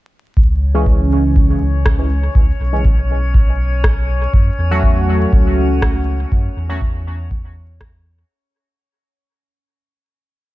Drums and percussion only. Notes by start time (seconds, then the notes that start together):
0.37 kick
0.86 kick
1.36 kick
1.86 kick, cross-stick
2.35 kick
2.85 kick
3.34 kick
3.84 kick, cross-stick
4.34 kick
4.83 kick
5.33 kick
5.82 kick, cross-stick
6.32 kick
6.81 kick
7.31 kick
7.81 kick, cross-stick